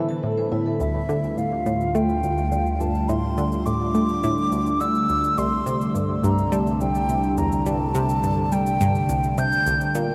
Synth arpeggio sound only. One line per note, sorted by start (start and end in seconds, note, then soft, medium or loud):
0.00 0.22 E3 loud
0.23 0.43 A2 medium
0.52 0.79 A2 medium
0.80 1.00 D2 loud
1.09 1.29 D3 loud
1.37 1.57 A2 medium
1.66 1.86 A2 loud
1.95 2.22 A3 loud
2.23 2.51 D2 medium
2.52 2.64 D3 medium
2.81 2.92 G2 medium
3.09 3.29 A2 loud
3.38 3.57 D3 loud
3.66 3.94 A2 medium
3.95 4.15 A3 medium
4.24 4.35 A2 loud
4.52 4.79 D2 medium
4.81 4.93 D3 medium
5.09 5.21 D2 medium
5.38 5.57 C2 loud
5.66 5.86 C3 loud
5.95 6.14 G2 medium
6.24 6.43 G2 loud
6.52 6.79 G3 loud
6.81 7.08 C2 medium
7.09 7.21 C3 medium
7.38 7.50 E2 medium
7.66 7.86 G2 loud
7.95 8.15 C3 loud
8.24 8.51 G2 medium
8.52 8.72 G3 medium
8.81 8.93 G2 loud
9.09 9.36 C2 medium
9.38 9.50 C3 medium
9.66 9.78 C2 medium
9.95 10.15 A#2 loud